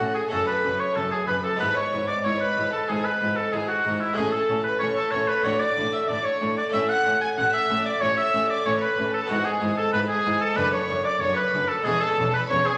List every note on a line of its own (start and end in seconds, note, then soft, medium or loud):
0.00 0.08 A2 medium
0.00 0.29 A2 medium
0.00 0.26 A3 medium
0.00 0.26 C#4 medium
0.00 0.27 E4 medium
0.00 0.14 F#4 medium
0.00 0.16 F#4 medium
0.00 0.15 F#5 loud
0.15 0.22 G#4 medium
0.15 0.32 G#4 medium
0.15 0.32 G#5 medium
0.28 0.40 F#1 medium
0.28 0.40 F#2 medium
0.28 1.55 A3 medium
0.28 1.56 C#4 medium
0.28 0.40 C#4 medium
0.28 1.57 F#4 medium
0.28 0.46 A4 loud
0.28 0.48 A4 loud
0.28 0.48 A5 loud
0.33 0.62 F#2 medium
0.47 0.81 B4 medium
0.47 0.80 B4 medium
0.47 0.79 B5 loud
0.64 0.72 F#1 medium
0.64 0.72 F#2 medium
0.64 0.94 F#2 medium
0.64 0.72 C#4 medium
0.80 0.97 C#5 medium
0.80 0.96 C#5 medium
0.80 0.96 C#6 medium
0.95 1.04 F#1 medium
0.95 1.05 F#2 medium
0.95 1.26 F#2 medium
0.95 1.05 C#4 medium
0.95 1.11 A4 medium
0.95 1.12 A4 medium
0.95 1.12 A5 loud
1.11 1.27 G#4 medium
1.11 1.19 G#4 medium
1.11 1.29 G#5 medium
1.28 1.37 F#1 medium
1.28 1.37 F#2 medium
1.28 1.58 F#2 medium
1.28 1.37 C#4 medium
1.28 1.35 B4 medium
1.28 1.44 B5 loud
1.44 1.59 A4 medium
1.44 1.51 A4 medium
1.44 1.61 A5 loud
1.56 4.11 G#3 medium
1.56 4.12 B3 medium
1.56 4.13 E4 medium
1.56 1.76 B4 medium
1.56 1.76 B4 loud
1.56 1.76 B5 loud
1.61 1.69 G#1 medium
1.61 1.69 G#2 medium
1.61 1.90 G#2 medium
1.61 1.69 E4 medium
1.76 2.09 C#5 medium
1.76 2.07 C#5 medium
1.76 2.08 C#6 loud
1.93 2.01 G#1 medium
1.93 2.01 G#2 medium
1.93 2.22 G#2 medium
1.93 2.01 E4 medium
2.08 2.24 D5 medium
2.08 2.15 D5 medium
2.08 2.25 D6 medium
2.24 2.34 G#1 medium
2.24 2.33 G#2 medium
2.24 2.54 G#2 medium
2.24 2.33 E4 medium
2.24 2.40 C#5 loud
2.24 2.40 C#5 medium
2.24 2.40 C#6 loud
2.40 2.73 B4 medium
2.40 2.72 B4 medium
2.40 2.72 B5 loud
2.57 2.65 G#1 medium
2.57 2.86 G#2 medium
2.57 2.65 G#2 medium
2.57 2.66 E4 medium
2.72 2.90 A4 medium
2.72 2.89 A4 medium
2.72 2.89 A5 loud
2.88 2.98 G#1 medium
2.88 2.97 G#2 medium
2.88 3.18 G#2 medium
2.88 2.98 E4 medium
2.88 3.06 G#4 medium
2.88 3.05 G#4 loud
2.88 3.05 G#5 loud
3.04 3.37 B4 medium
3.04 3.38 B4 medium
3.04 3.37 B5 medium
3.21 3.29 G#1 medium
3.21 3.50 G#2 medium
3.21 3.30 G#2 medium
3.21 3.29 E4 medium
3.37 3.54 A4 medium
3.37 3.53 A4 medium
3.37 3.53 A5 medium
3.52 3.61 G#1 medium
3.52 3.82 G#2 medium
3.52 3.61 G#2 medium
3.52 3.61 E4 medium
3.52 3.68 G#4 medium
3.52 3.69 G#4 medium
3.52 3.69 G#5 loud
3.69 4.02 F#4 medium
3.69 4.01 F#4 medium
3.69 4.01 F#5 medium
3.85 3.93 G#1 medium
3.85 4.14 G#2 medium
3.85 3.93 G#2 medium
3.85 3.94 E4 medium
4.00 4.17 E4 medium
4.00 4.18 E5 medium
4.13 4.25 A1 medium
4.13 5.40 A3 medium
4.13 5.40 C#4 medium
4.13 5.41 E4 medium
4.13 4.31 G#4 loud
4.17 4.46 A2 medium
4.17 4.26 A2 medium
4.17 4.25 C#4 medium
4.17 4.33 G#4 loud
4.17 4.33 G#5 loud
4.31 4.63 A4 medium
4.31 4.65 A4 medium
4.31 4.65 A5 medium
4.49 4.57 A1 medium
4.49 4.58 A2 medium
4.49 4.78 A2 medium
4.49 4.57 C#4 medium
4.64 4.79 B4 medium
4.64 4.81 B4 medium
4.64 4.73 B5 loud
4.79 4.89 A1 medium
4.79 4.90 A2 medium
4.79 5.10 A2 medium
4.79 4.90 C#4 medium
4.79 4.87 C#5 medium
4.79 4.97 C#5 medium
4.79 4.97 C#6 loud
4.96 5.13 A4 medium
4.96 5.14 A5 loud
5.11 5.21 A1 medium
5.11 5.22 A2 medium
5.11 5.43 A2 medium
5.11 5.22 C#4 medium
5.11 5.29 C#5 loud
5.11 5.20 C#6 loud
5.27 5.46 B4 medium
5.27 5.45 B4 medium
5.27 5.37 B5 medium
5.41 6.68 A3 medium
5.41 6.68 D4 medium
5.41 6.69 F#4 medium
5.41 5.61 C#5 loud
5.46 5.54 A1 medium
5.46 5.54 A2 medium
5.46 5.75 A2 medium
5.46 5.54 D4 medium
5.46 5.62 C#5 loud
5.46 5.52 C#6 loud
5.60 5.92 D5 medium
5.60 5.94 D5 loud
5.60 5.93 D6 loud
5.78 5.86 A1 medium
5.78 5.86 A2 medium
5.78 6.07 A2 medium
5.78 5.86 D4 medium
5.93 6.10 E5 medium
5.93 6.00 E5 medium
5.93 6.10 E6 medium
6.08 6.17 A1 medium
6.08 6.17 A2 medium
6.08 6.38 A2 medium
6.08 6.18 D4 medium
6.08 6.27 D5 medium
6.08 6.25 D5 loud
6.08 6.25 D6 loud
6.25 6.57 C#5 medium
6.25 6.57 C#6 loud
6.41 6.49 A1 medium
6.41 6.70 A2 medium
6.41 6.50 A2 medium
6.41 6.49 D4 medium
6.57 6.73 D5 medium
6.57 6.65 D5 medium
6.57 6.64 D6 loud
6.69 6.81 A1 medium
6.69 9.24 A3 medium
6.69 9.25 C#4 medium
6.69 9.25 E4 medium
6.69 6.79 E5 loud
6.73 6.81 A2 medium
6.73 7.03 A2 medium
6.73 6.82 C#4 medium
6.73 6.91 E5 loud
6.73 6.80 E6 loud
6.89 7.21 F#5 loud
6.89 7.21 F#5 medium
6.89 7.21 F#6 loud
7.05 7.13 A1 medium
7.05 7.13 A2 medium
7.05 7.35 A2 medium
7.05 7.14 C#4 medium
7.21 7.38 G#5 loud
7.21 7.29 G#5 medium
7.21 7.28 G#6 loud
7.37 7.46 A1 medium
7.37 7.46 A2 medium
7.37 7.67 A2 medium
7.37 7.46 C#4 medium
7.37 7.44 F#5 loud
7.37 7.53 F#5 loud
7.37 7.54 F#6 loud
7.53 7.85 E5 loud
7.53 7.86 E6 loud
7.70 7.78 A1 medium
7.70 7.78 A2 medium
7.70 7.99 A2 medium
7.70 7.78 C#4 medium
7.86 8.01 D5 loud
7.86 8.03 D5 medium
7.86 8.02 D6 loud
8.01 8.10 A1 medium
8.01 8.10 A2 medium
8.01 8.31 A2 medium
8.01 8.10 C#4 medium
8.01 8.17 C#5 loud
8.01 8.18 C#5 loud
8.01 8.08 C#6 loud
8.17 8.52 E5 loud
8.17 8.49 E5 loud
8.17 8.50 E6 loud
8.34 8.42 A1 medium
8.34 8.42 A2 medium
8.34 8.63 A2 medium
8.34 8.42 C#4 medium
8.50 8.66 D5 loud
8.50 8.65 D5 medium
8.50 8.66 D6 loud
8.65 8.74 A1 medium
8.65 8.73 A2 medium
8.65 8.95 A2 medium
8.65 8.74 C#4 medium
8.65 8.73 C#5 medium
8.65 8.82 C#5 loud
8.65 8.82 C#6 loud
8.81 9.13 B4 loud
8.81 9.14 B4 medium
8.81 9.14 B5 loud
8.98 9.06 A1 medium
8.98 9.06 A2 medium
8.98 9.27 A2 medium
8.98 9.06 C#4 medium
9.14 9.21 A4 medium
9.14 9.30 A4 medium
9.14 9.30 A5 loud
9.26 10.52 B3 medium
9.26 10.52 E4 medium
9.26 9.46 F#5 loud
9.30 9.38 G#1 medium
9.30 9.38 G#2 medium
9.30 9.59 G#2 medium
9.30 9.38 E4 medium
9.30 9.47 F#4 loud
9.30 9.46 F#4 loud
9.45 9.77 G#4 medium
9.45 9.78 G#4 medium
9.45 9.78 G#5 loud
9.61 9.70 G#1 medium
9.61 9.69 G#2 medium
9.61 9.90 G#2 medium
9.61 9.70 E4 medium
9.77 9.92 A4 medium
9.77 9.94 A4 medium
9.77 9.94 A5 loud
9.93 10.01 G#1 medium
9.93 10.02 G#2 medium
9.93 10.23 G#2 medium
9.93 10.02 E4 medium
9.93 10.00 B4 loud
9.93 10.09 B5 loud
10.09 10.42 G#4 loud
10.09 10.41 G#4 loud
10.09 10.41 G#5 loud
10.25 10.33 G#1 medium
10.25 10.33 G#2 medium
10.25 10.55 G#2 medium
10.25 10.34 E4 medium
10.41 10.58 A4 medium
10.41 10.57 A4 medium
10.41 10.58 A5 loud
10.54 10.65 F#1 loud
10.54 10.65 F#2 medium
10.54 11.80 A3 medium
10.54 11.81 D4 medium
10.54 10.73 B4 loud
10.54 10.74 B5 loud
10.58 10.87 F#2 medium
10.58 10.66 D4 medium
10.73 11.04 C#5 medium
10.73 11.05 C#5 medium
10.73 11.06 C#6 loud
10.89 10.97 F#1 medium
10.89 10.97 F#2 medium
10.89 11.19 F#2 medium
10.89 10.98 D4 medium
11.05 11.22 D5 loud
11.05 11.22 D5 medium
11.05 11.22 D6 loud
11.20 11.29 F#1 medium
11.20 11.30 F#2 medium
11.20 11.51 F#2 medium
11.20 11.30 D4 medium
11.20 11.36 C#5 loud
11.20 11.38 C#5 loud
11.20 11.38 C#6 loud
11.36 11.70 B4 loud
11.36 11.69 B4 loud
11.36 11.70 B5 loud
11.54 11.62 F#1 medium
11.54 11.62 F#2 medium
11.54 11.83 F#2 medium
11.54 11.62 D4 medium
11.68 11.86 A4 medium
11.68 11.77 A5 loud
11.82 11.94 E1 loud
11.82 11.94 E2 loud
11.82 12.78 G#3 medium
11.82 12.78 C#4 medium
11.82 12.78 E4 medium
11.82 12.02 G#4 loud
11.82 12.02 G#5 loud
11.87 12.15 E2 medium
11.87 11.95 C#4 medium
12.00 12.33 A4 loud
12.00 12.34 A4 loud
12.00 12.34 A5 loud
12.18 12.26 E1 medium
12.18 12.26 E2 medium
12.18 12.47 E2 medium
12.18 12.27 C#4 medium
12.34 12.50 B4 loud
12.34 12.41 B4 medium
12.34 12.51 B5 loud
12.50 12.59 E1 medium
12.50 12.59 E2 medium
12.50 12.78 E2 medium
12.50 12.59 C#4 medium
12.50 12.56 C#5 loud
12.50 12.68 C#5 loud
12.50 12.66 C#6 loud
12.66 12.78 G#4 medium
12.66 12.78 G#4 loud
12.66 12.78 G#5 loud